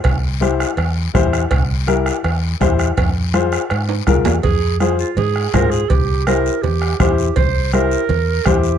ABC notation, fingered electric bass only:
X:1
M:4/4
L:1/8
Q:1/4=164
K:Fm
V:1 name="Fingered electric bass" clef=bass
C,,4 =E,,2 E,,2 | C,,4 =E,,2 E,,2 | F,,4 A,,2 C,, =E,, | F,,4 A,,2 A,,2 |
C,,4 =E,,2 E,,2 | C,,4 =E,,2 E,,2 |]